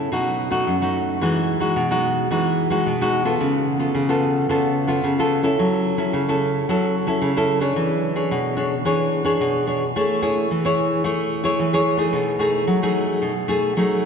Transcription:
0.12 0.64 B2 medium
0.12 0.49 A3 soft
0.12 0.49 D#4 soft
0.12 0.49 F#4 medium
0.51 0.75 A3 medium
0.51 0.75 D#4 medium
0.51 0.75 F#4 medium
0.67 1.19 F#2 medium
0.82 1.18 A3 medium
0.82 1.18 D#4 medium
0.82 1.18 F#4 medium
1.21 1.73 E3 medium
1.21 1.58 G#3 medium
1.21 1.58 D#4 medium
1.21 1.59 F#4 medium
1.60 1.84 G#3 medium
1.60 1.85 D#4 medium
1.60 1.84 F#4 medium
1.76 2.28 B2 medium
1.91 2.27 G#3 medium
1.91 2.27 D#4 medium
1.91 2.27 F#4 medium
2.31 2.83 E3 medium
2.31 2.67 G#3 medium
2.31 2.68 D#4 medium
2.31 2.68 F#4 medium
2.70 2.94 G#3 medium
2.70 2.94 D#4 medium
2.70 2.94 F#4 medium
2.86 3.38 B2 medium
3.01 3.23 G#3 medium
3.01 3.23 D#4 medium
3.01 3.23 F#4 medium
3.25 3.76 B3 medium
3.25 3.76 F4 medium
3.25 3.76 A4 medium
3.41 3.92 C#3 medium
3.79 4.03 B3 medium
3.79 4.03 F4 medium
3.79 4.03 A4 medium
3.95 4.46 C#3 medium
4.09 4.45 B3 medium
4.09 4.45 F4 medium
4.09 4.46 A4 medium
4.49 5.01 C#3 medium
4.49 4.86 B3 medium
4.49 4.86 F4 medium
4.49 4.86 A4 medium
4.87 5.12 B3 medium
4.87 5.12 F4 medium
4.87 5.12 A4 medium
5.04 5.56 C#3 medium
5.19 5.41 B3 medium
5.19 5.41 F4 medium
5.19 5.41 A4 medium
5.43 5.94 C#4 medium
5.43 5.94 E4 medium
5.43 5.95 A4 medium
5.59 6.11 F#3 medium
5.98 6.22 C#4 medium
5.98 6.21 E4 medium
5.98 6.22 A4 medium
6.13 6.65 C#3 medium
6.28 6.64 C#4 medium
6.28 6.64 E4 medium
6.28 6.65 A4 medium
6.69 7.20 F#3 medium
6.69 6.94 C#4 medium
6.69 6.94 E4 medium
6.69 6.94 A4 medium
7.07 7.31 C#4 medium
7.07 7.31 E4 medium
7.07 7.31 A4 medium
7.22 7.74 C#3 medium
7.37 7.59 C#4 medium
7.37 7.59 E4 medium
7.37 7.60 A4 medium
7.61 8.12 D4 medium
7.61 8.12 G#4 medium
7.61 8.12 C#5 medium
7.76 8.28 E3 medium
8.16 8.53 D4 medium
8.16 8.53 G#4 medium
8.16 8.54 C#5 medium
8.31 8.83 B2 medium
8.57 8.74 D4 medium
8.57 8.74 G#4 medium
8.57 8.74 C#5 medium
8.85 9.37 E3 medium
8.85 9.22 D4 medium
8.85 9.22 G#4 medium
8.85 9.23 C#5 medium
9.25 9.62 D4 medium
9.25 9.63 G#4 medium
9.25 9.63 C#5 medium
9.41 9.93 B2 medium
9.67 9.83 D4 medium
9.67 9.84 G#4 medium
9.67 9.84 C#5 medium
9.96 10.48 A3 medium
9.96 10.18 E4 medium
9.96 10.19 G#4 medium
9.96 10.19 C#5 medium
10.22 10.48 E4 medium
10.22 10.48 G#4 medium
10.22 10.48 C#5 medium
10.51 11.02 E3 medium
10.65 11.01 E4 medium
10.65 11.01 G#4 medium
10.65 11.01 C#5 medium
11.04 11.56 A3 medium
11.04 11.41 E4 medium
11.04 11.41 G#4 medium
11.04 11.41 C#5 medium
11.44 11.67 E4 medium
11.44 11.68 G#4 medium
11.44 11.68 C#5 medium
11.59 12.11 E3 medium
11.73 11.96 E4 medium
11.73 11.96 G#4 medium
11.73 11.96 C#5 medium
11.97 12.35 A3 medium
11.97 12.36 D#4 medium
11.97 12.36 G#4 medium
12.13 12.65 B2 medium
12.39 12.77 A3 medium
12.39 12.77 D#4 medium
12.39 12.77 G#4 medium
12.67 13.20 F#3 medium
12.82 13.33 A3 medium
12.82 13.33 D#4 medium
12.82 13.33 G#4 medium
13.22 13.74 B2 medium
13.48 13.72 A3 medium
13.48 13.72 D#4 medium
13.48 13.73 G#4 medium
13.77 14.05 F#3 medium
13.77 14.03 A3 medium
13.77 14.03 D#4 medium
13.77 14.03 G#4 medium

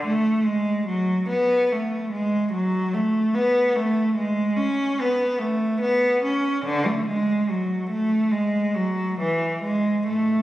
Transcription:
0.06 0.46 A3 medium
0.46 0.88 G#3 medium
0.86 1.28 F#3 medium
1.29 1.70 B3 medium
1.72 2.13 A3 medium
2.12 2.52 G#3 medium
2.52 2.93 F#3 medium
2.94 3.35 A3 medium
3.35 3.76 B3 medium
3.76 4.17 A3 medium
4.17 4.57 G#3 medium
4.57 4.99 C#4 medium
5.00 5.41 B3 medium
5.39 5.81 A3 medium
5.81 6.22 B3 medium
6.24 6.64 C#4 medium
6.65 6.85 D3 medium
6.86 7.06 A3 medium
7.07 7.47 G#3 medium
7.49 7.90 F#3 medium
7.90 8.31 A3 medium
8.31 8.74 G#3 medium
8.74 9.18 F#3 medium
9.20 9.62 E3 medium
9.62 10.06 G#3 medium
10.08 10.42 A2 soft
10.08 10.42 A3 medium

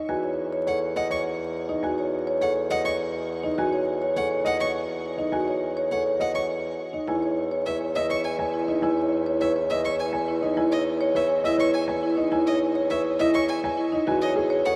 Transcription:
0.00 0.13 D#4 soft
0.00 0.13 D#5 soft
0.09 6.92 E2 medium
0.09 0.28 F#4 medium
0.09 0.28 G#5 medium
0.23 0.42 C#5 soft
0.52 0.71 C#5 medium
0.67 0.86 A4 medium
0.67 0.86 C#5 medium
0.67 0.78 F#5 medium
0.96 1.15 D#5 medium
0.96 1.07 F#5 medium
1.10 1.30 C#5 medium
1.10 1.22 C#6 soft
1.69 1.88 D#4 medium
1.69 1.88 D#5 soft
1.83 2.03 F#4 medium
1.83 2.02 G#5 medium
1.98 2.17 C#5 medium
2.27 2.46 C#5 medium
2.41 2.61 A4 medium
2.41 2.61 C#5 medium
2.41 2.53 F#5 medium
2.70 2.90 D#5 medium
2.70 2.82 F#5 medium
2.85 3.04 C#5 medium
2.85 2.96 C#6 medium
3.43 3.63 D#4 medium
3.43 3.63 D#5 medium
3.58 3.77 F#4 medium
3.58 3.77 G#5 medium
3.73 3.92 C#5 medium
4.02 4.21 C#5 medium
4.16 4.35 A4 medium
4.16 4.35 C#5 medium
4.16 4.28 F#5 medium
4.31 4.50 C#5 medium
4.45 4.64 D#5 medium
4.45 4.57 F#5 medium
4.60 4.79 C#5 medium
4.60 4.71 C#6 medium
5.18 5.37 D#4 medium
5.18 5.37 D#5 medium
5.32 5.52 F#4 medium
5.32 5.52 G#5 medium
5.48 5.67 C#5 medium
5.77 5.96 C#5 medium
5.91 6.10 A4 medium
5.91 6.10 C#5 medium
5.91 6.02 F#5 medium
6.06 6.25 C#5 medium
6.20 6.39 D#5 medium
6.20 6.32 F#5 medium
6.34 6.54 C#5 medium
6.34 6.46 C#6 soft
6.93 7.12 D#4 medium
6.93 7.12 D#5 soft
7.08 13.91 E2 medium
7.08 7.27 E4 medium
7.08 7.27 G#5 medium
7.23 7.41 C#5 medium
7.51 7.70 C#5 medium
7.66 7.85 B4 medium
7.66 7.85 C#5 medium
7.66 7.77 E5 medium
7.81 8.00 C#5 medium
7.95 8.14 D#5 medium
7.95 8.06 E5 medium
8.10 8.29 C#5 medium
8.10 8.21 C#6 medium
8.24 8.35 G#5 medium
8.39 8.58 G#5 medium
8.54 8.73 E4 medium
8.68 8.87 D#4 medium
8.68 8.87 D#5 medium
8.82 9.02 E4 medium
8.82 9.01 G#5 medium
8.97 9.16 C#5 medium
9.26 9.45 C#5 medium
9.41 9.60 B4 medium
9.41 9.60 C#5 medium
9.41 9.52 E5 medium
9.56 9.75 C#5 medium
9.70 9.89 D#5 medium
9.70 9.81 E5 medium
9.85 10.04 C#5 medium
9.85 9.96 C#6 medium
10.00 10.10 G#5 medium
10.13 10.32 G#5 medium
10.28 10.47 E4 medium
10.42 10.62 D#4 medium
10.42 10.61 D#5 medium
10.57 10.76 E4 medium
10.57 10.76 G#5 medium
10.72 10.91 C#5 medium
10.72 10.83 D#5 medium
11.01 11.20 C#5 medium
11.15 11.34 B4 medium
11.15 11.34 C#5 medium
11.15 11.27 E5 medium
11.30 11.49 C#5 medium
11.44 11.64 E4 medium
11.44 11.63 D#5 medium
11.44 11.56 E5 medium
11.58 11.78 C#5 medium
11.58 11.70 C#6 medium
11.74 11.85 G#5 medium
11.88 12.07 G#5 medium
12.03 12.22 E4 medium
12.17 12.36 D#4 medium
12.17 12.37 D#5 medium
12.32 12.51 E4 medium
12.32 12.51 G#5 medium
12.47 12.66 C#5 medium
12.47 12.58 D#5 medium
12.75 12.95 C#5 medium
12.90 13.09 B4 medium
12.90 13.09 C#5 medium
12.90 13.01 E5 medium
13.05 13.24 C#5 medium
13.19 13.38 E4 medium
13.19 13.39 D#5 medium
13.19 13.31 E5 medium
13.34 13.53 C#5 medium
13.34 13.45 C#6 medium
13.49 13.60 G#5 medium
13.64 13.82 G#5 medium
13.77 13.97 E4 medium
13.92 14.11 D#4 medium
13.92 14.12 D#5 medium
14.06 14.76 E2 medium
14.06 14.26 F#4 medium
14.06 14.26 G#5 medium
14.22 14.41 C#5 medium
14.22 14.33 D#5 medium
14.36 14.55 G#4 medium
14.50 14.69 C#5 medium
14.65 14.76 A4 medium
14.65 14.76 C#5 medium
14.65 14.76 F#5 medium

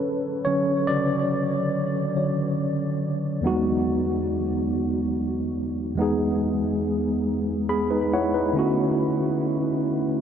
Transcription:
0.00 0.46 D3 soft
0.00 0.47 F#3 soft
0.00 0.47 C#4 medium
0.00 3.44 A4 medium
0.00 3.44 B4 medium
0.45 0.84 D3 soft
0.45 0.84 F#3 soft
0.45 0.84 C#4 medium
0.45 0.84 C#5 medium
0.87 3.39 C#3 medium
0.87 2.14 D3 soft
0.87 2.15 F#3 soft
0.87 2.53 D5 loud
2.16 2.54 D3 soft
2.16 2.54 F#3 soft
2.16 2.54 C#5 soft
3.41 5.93 E2 medium
3.41 3.49 G3 soft
3.41 5.95 B3 medium
3.46 5.96 G#3 medium
3.46 5.95 D#4 medium
3.46 5.96 F#4 medium
5.96 8.48 E2 medium
5.96 8.49 G#3 medium
5.96 7.65 B3 medium
6.00 7.66 D#4 medium
6.00 7.67 G#4 medium
7.69 7.89 B3 medium
7.69 7.89 G#4 medium
7.69 8.08 B5 medium
7.91 8.11 D#4 medium
7.91 8.10 B4 medium
8.13 8.32 E4 medium
8.13 8.32 C#5 medium
8.13 8.52 F#5 medium
8.34 8.74 D#4 medium
8.34 8.73 B4 medium
8.53 10.21 D3 medium
8.53 10.21 A3 medium
8.53 10.21 C#4 medium
8.57 10.21 E4 medium
8.57 10.21 F#4 medium

